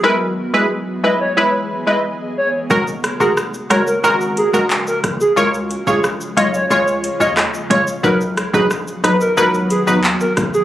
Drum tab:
HH |----------------|--x---x---x---x-|--x---x---x---x-|--x---x---x---x-|
SH |----------------|xxxxxxxxxxxxxxxx|xxxxxxxxxxxxxxxx|xxxxxxxxxxxxxxxx|
CP |----------------|------------x---|------------x---|------------x---|
SD |----------------|--r-r-r-------r-|----r-------r---|--r-r-r-------r-|
BD |----------------|o--o----------o-|---o----o--o--o-|o--o----------o-|